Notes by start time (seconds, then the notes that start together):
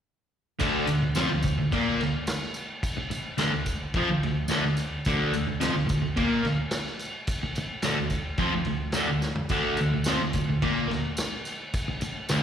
0.59 D2 D3, kick, tambourine, crash
0.87 D2, tambourine, crash
1.02 D2
1.15 F2 F3, snare, tambourine, crash
1.30 D2
1.43 D2, kick, tambourine, crash
1.59 D2
1.72 A#2 A#3, kick, tambourine, crash
2.01 D2, snare, crash
2.27 snare, tambourine, crash
2.42 snare
2.54 tambourine, crash
2.83 kick, tambourine, crash
2.97 muted overdriven electric guitar stroke
3.10 muted overdriven electric guitar stroke, tambourine, crash
3.38 D2 D3, snare, tambourine, crash
3.52 D2
3.66 kick, tambourine, crash
3.94 F2 F3, kick, tambourine, crash
4.09 D2
4.23 D2, crash
4.48 D2 D3, snare, tambourine, crash
4.64 D2
4.77 tambourine, crash
5.05 D2 D3, kick, tambourine, crash
5.34 D2, tambourine, crash
5.47 D2
5.60 F2 F3, snare, tambourine, crash
5.75 D2
5.87 D2, kick, tambourine, crash
6.02 D2
6.17 A#2 A#3, kick, tambourine, crash
6.44 D2, snare, crash
6.71 snare, tambourine, crash
6.87 snare
6.99 tambourine, crash
7.27 kick, tambourine, crash
7.43 muted overdriven electric guitar stroke
7.55 muted overdriven electric guitar stroke, tambourine, crash
7.82 D2 D3, snare, tambourine, crash
7.99 D2
8.10 kick, tambourine, crash
8.38 F2 F3, kick, tambourine, crash
8.54 D2
8.65 D2, crash
8.92 D2, snare, tambourine, crash
8.96 D3
9.09 D2
9.22 snare, tambourine
9.35 floor tom
9.49 D2 D3, kick, tambourine, crash
9.77 D2, tambourine, crash
9.94 D2
10.04 F2 F3, snare, tambourine, crash
10.23 D2
10.33 D2, kick, tambourine, crash
10.50 D2
10.62 A#2 A#3, kick, tambourine, crash
10.89 D2, snare, crash
11.17 snare, tambourine, crash
11.45 tambourine, crash
11.74 kick, tambourine, crash
11.88 muted overdriven electric guitar stroke
12.01 muted overdriven electric guitar stroke, tambourine, crash
12.29 D2 D3, snare, tambourine, crash